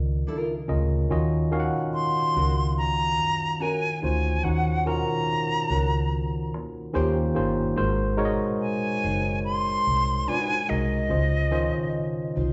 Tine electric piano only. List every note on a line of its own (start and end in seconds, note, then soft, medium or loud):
0.00 1.10 D#3 medium
0.00 0.68 C#4 medium
0.00 0.69 F4 medium
0.00 0.69 A#4 medium
0.00 1.12 D5 medium
0.00 0.69 D#5 medium
0.68 1.06 C#3 medium
0.68 1.06 C#4 medium
0.68 1.06 F4 medium
0.68 1.06 A#4 medium
0.68 1.07 D#5 medium
1.10 1.48 D#3 medium
1.10 1.48 C#4 medium
1.10 1.48 F4 medium
1.10 1.48 F#4 medium
1.10 1.49 D#5 medium
1.51 3.03 D#3 medium
1.51 3.03 C#4 medium
1.51 3.04 F#4 medium
1.51 1.60 F5 medium
1.60 3.07 F#5 loud
4.02 4.40 C#4 medium
4.02 4.40 D#4 medium
4.02 4.40 F4 medium
4.02 4.40 F#4 medium
4.02 4.41 C5 medium
4.43 4.81 D#3 medium
4.43 4.82 C#4 medium
4.43 4.82 D#4 medium
4.43 4.82 F#4 medium
4.43 4.82 F#5 medium
4.86 6.37 D#3 medium
4.86 6.37 C#4 medium
4.86 6.37 F4 medium
4.86 6.37 F#4 medium
4.86 6.38 A#4 medium
6.94 7.31 D#3 medium
6.94 7.31 A#3 medium
6.94 7.31 C#4 medium
6.94 7.32 F4 medium
6.94 7.32 G4 medium
6.94 7.32 C5 loud
7.35 7.73 D#3 medium
7.35 7.73 A#3 medium
7.35 7.73 C#4 medium
7.35 7.73 F4 medium
7.35 7.73 G4 medium
7.35 7.73 C5 medium
7.76 8.14 G#3 medium
7.76 8.14 D#4 medium
7.76 8.14 F#4 medium
7.76 8.15 A#4 medium
7.76 8.15 C5 loud
8.17 9.69 G#3 loud
8.17 9.69 D#4 medium
8.17 9.70 F#4 medium
8.17 9.70 A#4 medium
8.17 8.26 C#5 medium
8.25 9.73 D#5 loud
10.68 11.06 G#3 medium
10.68 11.06 D#4 medium
10.68 11.06 F#4 medium
10.68 11.07 A#4 medium
10.68 11.07 D#5 medium
11.09 11.47 C#3 medium
11.09 11.48 C#4 medium
11.09 11.48 F4 medium
11.09 11.48 C5 medium
11.09 11.48 D#5 medium
11.51 12.53 D#3 medium
11.51 12.53 C#4 medium
11.51 12.53 F4 medium
11.51 12.53 C5 medium
11.51 12.53 D#5 medium